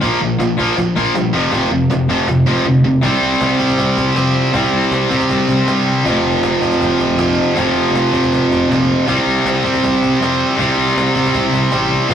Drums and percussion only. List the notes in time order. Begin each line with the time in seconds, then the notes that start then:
0.03 cajon bass
0.40 cajon slap
0.59 cajon bass
0.77 cajon bass
0.96 cajon bass
1.15 cajon slap
1.53 cajon bass
1.91 cajon slap
2.09 cajon bass
2.28 cajon bass
2.46 cajon bass
3.03 cajon bass
3.41 cajon slap
3.60 cajon bass
3.69 cajon bass
3.78 cajon bass
3.97 cajon bass
4.16 cajon slap
4.54 cajon bass
4.92 cajon slap
5.11 cajon bass
5.20 cajon bass
5.30 cajon bass
5.49 cajon bass
5.68 cajon slap
6.05 cajon bass
6.43 cajon slap
6.62 cajon bass
6.71 cajon bass
6.81 cajon bass
7.00 cajon bass
7.19 cajon slap
7.56 cajon bass
7.95 cajon slap
8.13 cajon bass
8.23 cajon bass
8.32 cajon bass
8.51 cajon bass
8.72 cajon slap
9.08 cajon bass
9.47 cajon slap
9.65 cajon bass
9.74 cajon bass
9.84 cajon bass
10.03 cajon bass
10.22 cajon slap
10.59 cajon bass
10.98 cajon slap
11.16 cajon bass
11.25 cajon bass
11.35 cajon bass
11.53 cajon bass
11.72 cajon slap
12.10 cajon bass